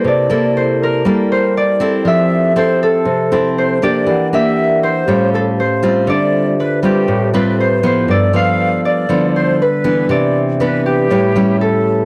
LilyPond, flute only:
\new Staff \with { instrumentName = "Flute" } { \time 4/4 \key c \major \tempo 4 = 120 d''4 c''8 bes'4 c''8 d''4 | e''4 c''8 a'4. c''8 d''8~ | d''8 e''4 c''4 a'8 bis'4 | d''4 b'8 g'4 b'8 c''8 c''8 |
d''8 f''4 d''4 c''8 b'4 | d''4 b'8 g'4. a'4 | }